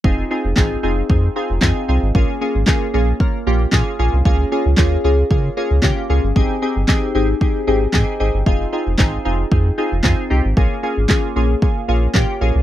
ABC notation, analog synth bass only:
X:1
M:4/4
L:1/16
Q:1/4=114
K:Fm
V:1 name="Analog synth bass" clef=bass
F,,,2 z F,,, A,,,2 F,,,2 F,,2 z F,,, F,, z C,, A,,, | B,,, z2 A,,, z2 B,,,2 z2 B,,,2 B,, z B,,, C,, | D,,2 z D,, E,,2 D,,2 D,2 z D,, D, z D,, G,,, | A,,, z2 G,,, z2 A,,,2 z2 A,,,2 A,, z A,,, G,,, |
F,,,2 z F,,, A,,,2 F,,,2 F,,2 z F,,, F,, z C,, A,,, | B,,, z2 A,,, z2 B,,,2 z2 B,,,2 B,, z B,,, C,, |]